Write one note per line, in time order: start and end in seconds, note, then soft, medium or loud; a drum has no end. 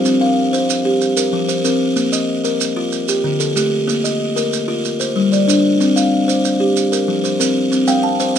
0.00 0.22 F4 medium
0.00 0.21 A#4 medium
0.05 0.37 C4 medium
0.05 maracas medium
0.21 0.69 F5 medium
0.53 0.85 C5 medium
0.53 maracas medium
0.70 maracas medium
0.85 1.01 G4 medium
1.01 maracas medium
1.17 1.63 A#4 medium
1.17 maracas medium
1.33 1.65 F3 medium
1.48 1.96 C5 medium
1.48 maracas medium
1.65 1.97 C4 medium
1.65 2.13 A#4 medium
1.65 maracas medium
1.96 2.28 A#3 medium
1.96 maracas soft
2.12 2.60 D#5 medium
2.12 maracas medium
2.44 2.76 A#4 medium
2.44 maracas medium
2.61 maracas medium
2.77 2.92 F4 medium
2.92 maracas medium
3.08 3.55 G4 medium
3.08 maracas medium
3.24 3.56 D3 medium
3.40 3.88 A4 medium
3.40 maracas medium
3.56 3.88 A3 medium
3.56 4.04 G4 medium
3.56 maracas medium
3.87 4.20 A#3 medium
3.87 maracas medium
4.04 4.52 D#5 medium
4.04 maracas medium
4.36 4.68 A#4 medium
4.36 maracas soft
4.53 maracas medium
4.68 4.84 F4 medium
4.85 maracas soft
5.00 5.46 C5 medium
5.00 maracas medium
5.16 5.48 G3 medium
5.32 5.80 D5 medium
5.32 maracas soft
5.48 5.80 D4 medium
5.48 5.96 C5 medium
5.48 maracas medium
5.80 6.12 C4 medium
5.80 maracas soft
5.96 6.44 F5 medium
5.96 maracas medium
6.28 6.60 C5 medium
6.28 maracas soft
6.45 maracas medium
6.60 6.76 G4 medium
6.77 maracas medium
6.92 7.38 A#4 medium
6.92 maracas medium
7.08 7.40 F3 medium
7.24 7.72 C5 medium
7.24 maracas medium
7.40 7.70 C4 medium
7.40 7.88 A#4 medium
7.40 maracas medium
7.72 8.04 C4 medium
7.72 maracas medium
7.88 8.20 C4 medium
7.88 8.36 F5 medium
7.88 8.36 G5 medium
7.88 maracas medium
8.03 8.39 A5 medium
8.20 8.39 C5 medium
8.20 maracas medium